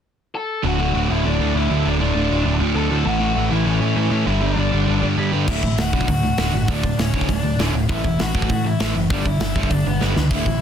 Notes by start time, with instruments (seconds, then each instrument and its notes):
0.35 lead electric guitar A4 A5
0.64 picked electric bass D1, distorted electric guitar D2 A2 D3, lead electric guitar F#4 F#5
0.79 distorted electric guitar D2 A2 D3
0.94 picked electric bass D1, distorted electric guitar D2 A2 D3
1.09 picked electric bass D1, distorted electric guitar D2 A2 D3, lead electric guitar E4 E5
1.25 picked electric bass D1, distorted electric guitar D2 A2 D3, lead electric guitar D4 D5
1.40 picked electric bass D2, distorted electric guitar D2 A2 D3
1.54 picked electric bass D2, distorted electric guitar D2 A2 D3, lead electric guitar E4 E5
1.70 picked electric bass D2, distorted electric guitar D2 A2 D3
1.84 picked electric bass D1, distorted electric guitar D2 A2 D3, lead electric guitar D4 D5
2.00 distorted electric guitar D2 A2 D3, lead electric guitar D4 D5
2.14 picked electric bass D1, distorted electric guitar D2 A2 D3
2.29 picked electric bass D1, distorted electric guitar D2 A2 D3
2.45 picked electric bass D1, distorted electric guitar D2 A2 D3
2.60 picked electric bass D2, distorted electric guitar D2 A2 D3
2.75 distorted electric guitar D2 A2 D3, picked electric bass D2, lead electric guitar A4 A5
2.90 picked electric bass D2, distorted electric guitar D2 A2 D3
3.05 picked electric bass A1, distorted electric guitar A2 E3 A3, lead electric guitar F#4 F#5
3.20 distorted electric guitar A2 E3 A3
3.35 picked electric bass A1, distorted electric guitar A2 E3 A3
3.51 picked electric bass A1, distorted electric guitar A2 E3 A3, lead electric guitar E4 E5
3.65 picked electric bass A1, distorted electric guitar A2 E3 A3, lead electric guitar C#4 C#5
3.80 picked electric bass A2, distorted electric guitar A2 E3 A3
3.95 distorted electric guitar A2 E3 A3, picked electric bass A2, lead electric guitar C#4 C#5
4.11 picked electric bass A2, distorted electric guitar A2 E3 A3
4.25 picked electric bass G1, distorted electric guitar G2 D3 G3, lead electric guitar E4 E5
4.41 distorted electric guitar G2 D3 G3, lead electric guitar D4 D5
4.56 picked electric bass G1, distorted electric guitar G2 D3 G3
4.72 picked electric bass G1, distorted electric guitar G2 D3 G3
4.87 picked electric bass G1, distorted electric guitar G2 D3 G3
5.02 distorted electric guitar G2 D3 G3, picked electric bass G2
5.17 picked electric bass G2, distorted electric guitar G2 D3 G3
5.33 picked electric bass G2, distorted electric guitar G2 D3 G3
5.48 picked electric bass D1, distorted electric guitar D2 A2 D3, lead electric guitar E4 E5, kick, crash
5.63 picked electric bass A1, distorted electric guitar D2 A2, kick
5.78 picked electric bass D1, distorted electric guitar D2 A2, lead electric guitar F#4 F#5, snare, open hi-hat
5.93 picked electric bass B1, distorted electric guitar D2 A2 D3, kick
6.01 kick
6.08 distorted electric guitar D2 A2, picked electric bass D2, lead electric guitar F#4 F#5, kick, open hi-hat
6.23 distorted electric guitar D2 A2
6.38 picked electric bass D1, distorted electric guitar D2 A2 D3, snare, open hi-hat
6.53 picked electric bass G1, distorted electric guitar D2 A2
6.68 picked electric bass D1, distorted electric guitar D2 A2 D3, lead electric guitar D4 D5, kick, open hi-hat
6.83 distorted electric guitar D2 A2, kick
6.98 picked electric bass D1, distorted electric guitar D2 A2, lead electric guitar C#4 C#5, snare, open hi-hat
7.13 picked electric bass D1, distorted electric guitar D2 A2 D3, kick
7.21 kick
7.29 picked electric bass D1, distorted electric guitar D2 A2, lead electric guitar D4 D5, kick, open hi-hat
7.44 picked electric bass D1, distorted electric guitar D2 A2
7.59 picked electric bass D1, distorted electric guitar D2 A2 D3, lead electric guitar C#5, snare, open hi-hat
7.73 picked electric bass D1, distorted electric guitar D2 A2
7.88 picked electric bass A1, distorted electric guitar A2 E3 A3, lead electric guitar E4 E5, kick, open hi-hat
8.04 picked electric bass E1, distorted electric guitar A2 E3, kick
8.19 picked electric bass A1, distorted electric guitar A2 E3, lead electric guitar F#4 F#5, snare, open hi-hat
8.33 picked electric bass G1, distorted electric guitar A2 E3 A3, kick
8.42 kick
8.49 distorted electric guitar A2 E3, picked electric bass A2, lead electric guitar F#4 F#5, kick, open hi-hat
8.64 distorted electric guitar A2 E3, lead electric guitar E4 E5
8.79 picked electric bass A1, distorted electric guitar A2 E3 A3, snare, open hi-hat
8.95 picked electric bass F#1, distorted electric guitar A2 E3
9.10 picked electric bass G1, distorted electric guitar G2 D3 G3, lead electric guitar D4 D5, kick, open hi-hat
9.25 distorted electric guitar G2 D3, lead electric guitar E4 E5, kick
9.40 picked electric bass G1, distorted electric guitar G2 D3, snare, open hi-hat
9.55 picked electric bass G1, distorted electric guitar G2 D3 G3, kick
9.63 kick
9.71 picked electric bass G1, distorted electric guitar G2 D3, lead electric guitar D4 D5, kick, open hi-hat
9.85 picked electric bass G1, distorted electric guitar G2 D3, lead electric guitar B3 B4
10.00 picked electric bass G1, distorted electric guitar G2 D3 G3, lead electric guitar B3 B4, snare
10.16 picked electric bass C#2, distorted electric guitar G2 D3, snare
10.31 picked electric bass D1, distorted electric guitar D2 A2 D3, lead electric guitar E4 E5, kick, open hi-hat, splash
10.46 picked electric bass A1, distorted electric guitar D2 A2, kick